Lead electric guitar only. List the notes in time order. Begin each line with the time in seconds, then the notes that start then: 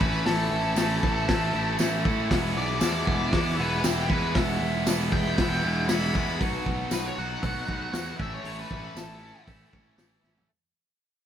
0.00 B4
0.26 A4
2.57 D5
3.61 B4
3.86 G4
4.11 B4
5.12 G5
5.89 B5
6.16 B5
6.93 B4
7.06 C#5
7.18 F#5
8.22 E5
8.33 C#5
8.60 B4
8.98 A4